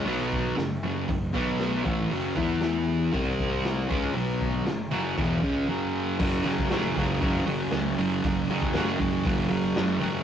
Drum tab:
CC |----------------|----------------|----------------|x---------------|
HH |o---o---o---o---|o---o---o---o---|o---o---o-------|--o-o-o-o-o-o-o-|
SD |----o-------o---|----o-------o---|----o-----------|----o----o--o---|
BD |--o-----o-o---o-|--o-----o-o---o-|--o-----o-o-----|o--o--o-o-------|

CC |----------------|
HH |o-o-o-o-o-o-o-o-|
SD |----o----o--o---|
BD |o--o--o-o-------|